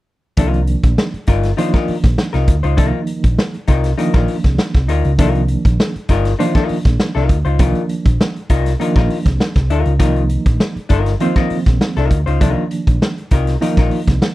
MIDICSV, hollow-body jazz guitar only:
0, 0, Header, 1, 2, 480
1, 0, Start_track
1, 0, Key_signature, -3, "minor"
1, 0, Tempo, 601202
1, 303, Time_signature, 4, 2, 24, 8
1, 11453, End_track
2, 0, Start_track
2, 0, Title_t, "Hollow-body jazz guitar"
2, 0, Program_c, 0, 26
2, 297, Note_on_c, 0, 63, 76
2, 305, Note_on_c, 0, 65, 92
2, 309, Note_on_c, 0, 70, 89
2, 475, Note_off_c, 0, 63, 0
2, 478, Note_off_c, 0, 65, 0
2, 480, Note_off_c, 0, 70, 0
2, 1018, Note_on_c, 0, 63, 85
2, 1024, Note_on_c, 0, 65, 93
2, 1030, Note_on_c, 0, 70, 92
2, 1195, Note_off_c, 0, 63, 0
2, 1198, Note_off_c, 0, 65, 0
2, 1201, Note_off_c, 0, 70, 0
2, 1254, Note_on_c, 0, 63, 70
2, 1259, Note_on_c, 0, 65, 74
2, 1264, Note_on_c, 0, 72, 73
2, 1382, Note_off_c, 0, 65, 0
2, 1384, Note_off_c, 0, 72, 0
2, 1385, Note_off_c, 0, 63, 0
2, 1387, Note_on_c, 0, 70, 82
2, 1392, Note_on_c, 0, 65, 77
2, 1395, Note_on_c, 0, 63, 72
2, 1555, Note_off_c, 0, 70, 0
2, 1557, Note_off_c, 0, 65, 0
2, 1558, Note_off_c, 0, 63, 0
2, 1859, Note_on_c, 0, 70, 80
2, 1864, Note_on_c, 0, 65, 61
2, 1870, Note_on_c, 0, 63, 61
2, 2031, Note_off_c, 0, 70, 0
2, 2033, Note_off_c, 0, 65, 0
2, 2036, Note_off_c, 0, 63, 0
2, 2100, Note_on_c, 0, 72, 67
2, 2105, Note_on_c, 0, 65, 58
2, 2110, Note_on_c, 0, 63, 63
2, 2201, Note_off_c, 0, 63, 0
2, 2205, Note_off_c, 0, 65, 0
2, 2210, Note_on_c, 0, 63, 88
2, 2214, Note_on_c, 0, 65, 87
2, 2216, Note_off_c, 0, 72, 0
2, 2219, Note_on_c, 0, 70, 102
2, 2391, Note_off_c, 0, 63, 0
2, 2393, Note_off_c, 0, 65, 0
2, 2395, Note_off_c, 0, 70, 0
2, 2935, Note_on_c, 0, 63, 94
2, 2939, Note_on_c, 0, 65, 85
2, 2946, Note_on_c, 0, 70, 99
2, 3113, Note_off_c, 0, 63, 0
2, 3115, Note_off_c, 0, 65, 0
2, 3119, Note_off_c, 0, 70, 0
2, 3174, Note_on_c, 0, 63, 73
2, 3178, Note_on_c, 0, 65, 67
2, 3184, Note_on_c, 0, 70, 69
2, 3294, Note_off_c, 0, 70, 0
2, 3299, Note_off_c, 0, 65, 0
2, 3303, Note_off_c, 0, 63, 0
2, 3303, Note_on_c, 0, 70, 97
2, 3309, Note_on_c, 0, 65, 72
2, 3313, Note_on_c, 0, 63, 67
2, 3473, Note_off_c, 0, 70, 0
2, 3475, Note_off_c, 0, 65, 0
2, 3477, Note_off_c, 0, 63, 0
2, 3899, Note_on_c, 0, 63, 82
2, 3908, Note_on_c, 0, 65, 76
2, 3909, Note_on_c, 0, 70, 87
2, 4075, Note_off_c, 0, 63, 0
2, 4080, Note_off_c, 0, 65, 0
2, 4080, Note_off_c, 0, 70, 0
2, 4142, Note_on_c, 0, 63, 84
2, 4144, Note_on_c, 0, 65, 86
2, 4154, Note_on_c, 0, 70, 93
2, 4317, Note_off_c, 0, 63, 0
2, 4318, Note_off_c, 0, 65, 0
2, 4322, Note_off_c, 0, 70, 0
2, 4862, Note_on_c, 0, 63, 82
2, 4872, Note_on_c, 0, 65, 94
2, 4875, Note_on_c, 0, 70, 103
2, 5037, Note_off_c, 0, 63, 0
2, 5042, Note_off_c, 0, 65, 0
2, 5043, Note_off_c, 0, 70, 0
2, 5099, Note_on_c, 0, 63, 59
2, 5105, Note_on_c, 0, 72, 70
2, 5106, Note_on_c, 0, 65, 70
2, 5226, Note_off_c, 0, 65, 0
2, 5227, Note_off_c, 0, 72, 0
2, 5231, Note_off_c, 0, 63, 0
2, 5231, Note_on_c, 0, 70, 89
2, 5235, Note_on_c, 0, 65, 78
2, 5240, Note_on_c, 0, 63, 75
2, 5396, Note_off_c, 0, 70, 0
2, 5399, Note_off_c, 0, 65, 0
2, 5401, Note_off_c, 0, 63, 0
2, 5707, Note_on_c, 0, 70, 75
2, 5711, Note_on_c, 0, 65, 63
2, 5717, Note_on_c, 0, 63, 65
2, 5874, Note_off_c, 0, 70, 0
2, 5877, Note_off_c, 0, 65, 0
2, 5880, Note_off_c, 0, 63, 0
2, 5946, Note_on_c, 0, 72, 64
2, 5952, Note_on_c, 0, 65, 55
2, 5957, Note_on_c, 0, 63, 49
2, 6055, Note_off_c, 0, 63, 0
2, 6059, Note_off_c, 0, 65, 0
2, 6064, Note_on_c, 0, 63, 77
2, 6068, Note_on_c, 0, 65, 94
2, 6072, Note_off_c, 0, 72, 0
2, 6076, Note_on_c, 0, 70, 104
2, 6238, Note_off_c, 0, 63, 0
2, 6240, Note_off_c, 0, 65, 0
2, 6244, Note_off_c, 0, 70, 0
2, 6786, Note_on_c, 0, 65, 86
2, 6787, Note_on_c, 0, 63, 83
2, 6794, Note_on_c, 0, 70, 96
2, 6959, Note_off_c, 0, 65, 0
2, 6960, Note_off_c, 0, 63, 0
2, 6963, Note_off_c, 0, 70, 0
2, 7024, Note_on_c, 0, 63, 73
2, 7032, Note_on_c, 0, 65, 68
2, 7038, Note_on_c, 0, 70, 80
2, 7146, Note_off_c, 0, 70, 0
2, 7153, Note_off_c, 0, 65, 0
2, 7155, Note_off_c, 0, 63, 0
2, 7156, Note_on_c, 0, 70, 82
2, 7162, Note_on_c, 0, 65, 75
2, 7164, Note_on_c, 0, 63, 68
2, 7319, Note_off_c, 0, 70, 0
2, 7323, Note_off_c, 0, 65, 0
2, 7324, Note_off_c, 0, 63, 0
2, 7746, Note_on_c, 0, 63, 67
2, 7748, Note_on_c, 0, 65, 83
2, 7758, Note_on_c, 0, 70, 79
2, 7920, Note_off_c, 0, 63, 0
2, 7920, Note_off_c, 0, 65, 0
2, 7925, Note_off_c, 0, 70, 0
2, 7979, Note_on_c, 0, 63, 96
2, 7980, Note_on_c, 0, 65, 88
2, 7986, Note_on_c, 0, 70, 93
2, 8156, Note_off_c, 0, 63, 0
2, 8157, Note_off_c, 0, 65, 0
2, 8160, Note_off_c, 0, 70, 0
2, 8696, Note_on_c, 0, 63, 88
2, 8706, Note_on_c, 0, 65, 84
2, 8707, Note_on_c, 0, 70, 109
2, 8875, Note_off_c, 0, 63, 0
2, 8880, Note_off_c, 0, 65, 0
2, 8880, Note_off_c, 0, 70, 0
2, 8946, Note_on_c, 0, 63, 60
2, 8949, Note_on_c, 0, 65, 65
2, 8952, Note_on_c, 0, 72, 77
2, 9062, Note_off_c, 0, 65, 0
2, 9067, Note_off_c, 0, 63, 0
2, 9067, Note_off_c, 0, 72, 0
2, 9070, Note_on_c, 0, 70, 85
2, 9072, Note_on_c, 0, 65, 75
2, 9076, Note_on_c, 0, 63, 71
2, 9238, Note_off_c, 0, 65, 0
2, 9238, Note_off_c, 0, 70, 0
2, 9241, Note_off_c, 0, 63, 0
2, 9555, Note_on_c, 0, 70, 82
2, 9561, Note_on_c, 0, 65, 61
2, 9565, Note_on_c, 0, 63, 62
2, 9720, Note_off_c, 0, 70, 0
2, 9723, Note_off_c, 0, 65, 0
2, 9725, Note_off_c, 0, 63, 0
2, 9789, Note_on_c, 0, 72, 71
2, 9795, Note_on_c, 0, 65, 59
2, 9800, Note_on_c, 0, 63, 57
2, 9898, Note_off_c, 0, 63, 0
2, 9899, Note_off_c, 0, 65, 0
2, 9907, Note_on_c, 0, 63, 91
2, 9909, Note_on_c, 0, 65, 88
2, 9912, Note_off_c, 0, 72, 0
2, 9915, Note_on_c, 0, 70, 95
2, 10081, Note_off_c, 0, 63, 0
2, 10082, Note_off_c, 0, 65, 0
2, 10085, Note_off_c, 0, 70, 0
2, 10635, Note_on_c, 0, 63, 76
2, 10640, Note_on_c, 0, 65, 79
2, 10644, Note_on_c, 0, 70, 100
2, 10806, Note_off_c, 0, 63, 0
2, 10808, Note_off_c, 0, 65, 0
2, 10810, Note_off_c, 0, 70, 0
2, 10869, Note_on_c, 0, 63, 70
2, 10875, Note_on_c, 0, 65, 71
2, 10879, Note_on_c, 0, 70, 67
2, 10999, Note_off_c, 0, 70, 0
2, 11000, Note_off_c, 0, 65, 0
2, 11005, Note_off_c, 0, 63, 0
2, 11008, Note_on_c, 0, 70, 80
2, 11009, Note_on_c, 0, 65, 74
2, 11015, Note_on_c, 0, 63, 65
2, 11168, Note_off_c, 0, 65, 0
2, 11168, Note_off_c, 0, 70, 0
2, 11171, Note_off_c, 0, 63, 0
2, 11453, End_track
0, 0, End_of_file